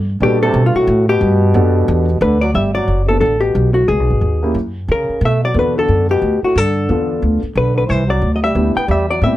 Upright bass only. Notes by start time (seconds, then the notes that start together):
Already playing: G2
0.20 A#2
0.54 B2
0.75 muted upright bass stroke
0.87 A2
1.21 G2
1.54 F#2
1.88 E2
2.21 D2
2.54 G1
2.88 F#1
3.21 A1
3.55 B1
3.88 C#2
3.99 B1
4.10 G#1
4.21 D#2
4.55 F#2
4.88 C#3
5.09 muted upright bass stroke
5.21 B2
5.54 E2
5.88 F#2
6.22 D2
6.42 muted upright bass stroke
6.56 G2
6.89 E2
7.22 D2
7.42 muted upright bass stroke
7.55 B1
7.89 C2
8.22 D2
8.55 D2
8.76 muted upright bass stroke
8.88 E2
9.22 A2